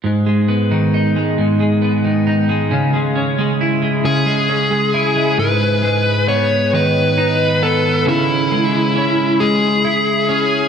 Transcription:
<<
  \new Staff \with { instrumentName = "Lead electric guitar" } { \time 6/8 \key gis \phrygian \tempo 4. = 45 r2. | r4. gis'4. | b'4 cis''8 b'4 a'8 | e'4. gis'4. | }
  \new Staff \with { instrumentName = "Clean electric guitar" } { \clef bass \time 6/8 \key gis \phrygian gis,16 gis16 b16 dis16 dis'16 gis16 gis,16 gis16 b16 dis16 dis'16 gis16 | cis16 gis16 cis'16 gis16 e'16 gis16 cis16 gis16 cis'16 gis16 e'16 gis16 | gis,8 gis8 b8 dis8 dis'8 b8 | cis8 gis8 cis'8 gis8 e'8 cis'8 | }
>>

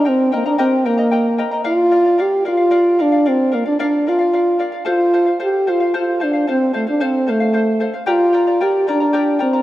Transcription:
<<
  \new Staff \with { instrumentName = "Charango" } { \time 6/8 \key bes \major \tempo 4. = 75 <bes' ees'' g'' bes''>8 <bes' ees'' g'' bes''>16 <bes' ees'' bes''>16 <g' bes' ees'' g'' bes''>8 <bes' ees'' g'' bes''>16 <bes' ees'' bes''>16 <bes' ees'' g'' bes''>8 <bes' ees'' g'' bes''>16 <bes' ees'' bes''>16 | <bes' d'' f''>8 <bes' d'' f''>16 <d'' f''>16 <bes' d'' f''>8 <bes' d'' f''>16 <d'' f''>16 <bes' d'' f''>8 <bes' d'' f''>16 <d'' f''>16 | <bes' d'' f''>8 <bes' d'' f''>16 <d'' f''>16 <bes' d'' f''>8 <bes' d'' f''>16 <d'' f''>16 <bes' d'' f''>8 <bes' d'' f''>16 <d'' f''>16 | <a' c'' f''>8 <a' c'' f''>16 <c'' f''>16 <a' c'' f''>8 <a' c'' f''>16 <c'' f''>16 <a' c'' f''>8 <a' c'' f''>16 <c'' f''>16 |
<a' c'' f''>8 <a' c'' f''>16 <c'' f''>16 <a' c'' f''>8 <a' c'' f''>16 <c'' f''>16 <a' c'' f''>8 <a' c'' f''>16 <c'' f''>16 | <g' bes' d'' g'' bes''>8 <bes' d'' g'' bes''>16 <bes' d'' bes''>16 <bes' d'' g'' bes''>8 <bes' d'' g'' bes''>16 <bes' d'' bes''>16 <g' bes' d'' g'' bes''>8 <bes' d'' g'' bes''>16 <bes' d'' bes''>16 | }
  \new Staff \with { instrumentName = "French horn" } { \time 6/8 \key bes \major c'8 bes16 d'16 c'8 bes4 r8 | f'4 g'8 f'4 d'8 | c'8 bes16 d'16 d'8 f'4 r8 | f'4 g'8 f'8 f'8 d'8 |
c'8 a16 d'16 c'8 a4 r8 | f'4 g'8 d'4 c'8 | }
>>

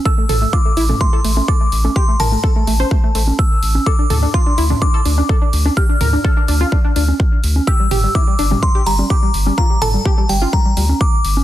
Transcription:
<<
  \new Staff \with { instrumentName = "Synth bell" } { \time 4/4 \key d \minor \tempo 4 = 126 e'''4 d'''4 c'''4 d'''4 | c'''8 a''2~ a''8 e'''4 | d'''4 c'''4 d'''2 | f'''2.~ f'''8 r8 |
e'''4 d'''4 c'''8 bes''8 d'''4 | bes''8 a''4 g''8 bes''4 d'''4 | }
  \new Staff \with { instrumentName = "Synth arpeggio sound" } { \time 4/4 \key d \minor a'16 a16 a'16 a16 f'16 a16 e'16 a16 a16 a'16 a16 a16 a'16 a16 r16 a16 | g'16 a16 bes'16 a16 a'16 a16 a16 c''16 a16 a16 a16 r4 r16 | a'16 d'16 a'16 d'16 f'16 d'16 e'16 d'16 d'16 a'16 d'16 d'16 a'16 d'16 r16 d'16 | g'16 d'16 bes'16 d'16 a'16 d'16 d'16 f'16 d'16 d'16 d'16 r4 r16 |
g'16 g16 g'16 g16 e'16 g16 d'16 g16 g16 g'16 g16 g16 g'16 g16 r16 g16 | f'16 g16 a'16 g16 g'16 g16 g16 f'16 g16 g16 g16 r4 r16 | }
  \new Staff \with { instrumentName = "Sub bass" } { \clef bass \time 4/4 \key d \minor r8 a,,8 r8 a,,8 r8 a,,8 r8 a,,8 | r8 a,,8 r8 a,,8 r8 a,,8 r8 a,,8 | r8 d,8 r8 d,8 r8 d,8 r8 d,8 | r8 d,8 r8 d,8 r8 d,8 r8 d,8 |
r8 g,,8 r8 g,,8 r8 g,,8 r8 g,,8 | r8 g,,8 r8 g,,8 r8 d,8 r8 g,,8 | }
  \new DrumStaff \with { instrumentName = "Drums" } \drummode { \time 4/4 bd8 <hho toml>8 bd8 hho16 <cgho toml>16 bd8 hho16 cgho16 bd8 hho16 cgho16 | bd8 <hho toml>8 bd8 hho16 cgho16 bd8 hho16 cgho16 bd8 hho16 cgho16 | bd8 <hho toml>8 bd8 hho16 <cgho toml>16 bd8 hho16 cgho16 bd8 hho16 cgho16 | bd8 <hho toml>8 bd8 hho16 cgho16 bd8 hho16 cgho16 bd8 hho16 cgho16 |
bd8 <hho toml>8 bd8 hho16 <cgho toml>16 bd8 hho16 cgho16 bd8 hho16 cgho16 | bd8 <hho toml>8 bd8 hho16 cgho16 bd8 hho16 cgho16 bd8 hho16 cgho16 | }
>>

